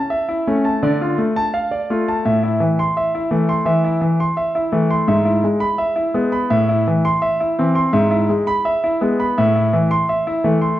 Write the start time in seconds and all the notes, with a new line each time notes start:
Already playing: A5
0.10 E5
0.29 E4
0.47 A3 C#4
0.65 A5
0.83 D3 D5
1.01 F4
1.18 A3
1.36 A5
1.54 F5
1.71 D5
1.90 A3 F4
2.08 A5
2.25 A2 E5
2.43 E4
2.60 E3
2.79 C6
2.97 E5
3.15 E4
3.31 E3 A3
3.49 C6
3.65 E3 E5
3.84 E4
4.01 E3
4.20 C6
4.37 E5
4.55 E4
4.72 E3 A3
4.90 C6
5.07 G#2 E5
5.25 E4
5.44 G#3
5.60 B5
5.78 E5
5.96 E4
6.14 G#3 B3
6.32 B5
6.50 A2 E5
6.69 E4
6.88 E3
7.05 C6
7.22 E5
7.40 E4
7.59 E3 C4
7.75 C6
7.93 G#2 E5
8.11 E4
8.30 G#3
8.47 B5
8.65 E5
8.84 E4
9.01 G#3 B3
9.20 B5
9.38 A2 E5
9.56 E4
9.73 E3
9.91 C6
10.09 E5
10.27 E4
10.44 E3 A3
10.61 C6